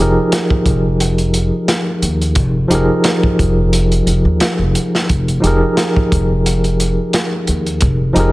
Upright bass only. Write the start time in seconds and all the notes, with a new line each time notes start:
Already playing: F1
0.66 F1
2.02 D#2
2.36 F1
2.70 F1
3.39 F1
4.07 F1
4.25 D#2
4.59 F1
5.10 F1
5.44 F1
6.12 F1
7.48 D#2
7.82 F1
8.16 F1